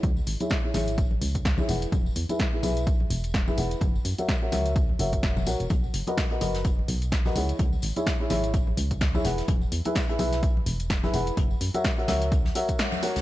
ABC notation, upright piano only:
X:1
M:4/4
L:1/16
Q:"Swing 16ths" 1/4=127
K:Elyd
V:1 name="Upright piano"
z3 [EGce] z [EGce] [EGce]2 z4 z [EGce] [EGBf]2 | z3 [EGBe] z [EGBe] [EGBe]2 z4 z [EGBe] [EGBf]2 | z3 [FAce] z [FAce] [FAce]2 z2 [FAce]4 [FAcf] z | z3 [FABd] z [FABd] [FABd]2 z4 z [FABd] [EGcf]2 |
z3 [EGce] z [EGce] [EGce]2 z4 z [EGce] [EGBf]2 | z3 [EGBe] z [EGBe] [EGBe]2 z4 z [EGBe] [EGBf]2 | z3 [FAce] z [FAce] [FAce]2 z2 [FAce]4 [FAcf] z |]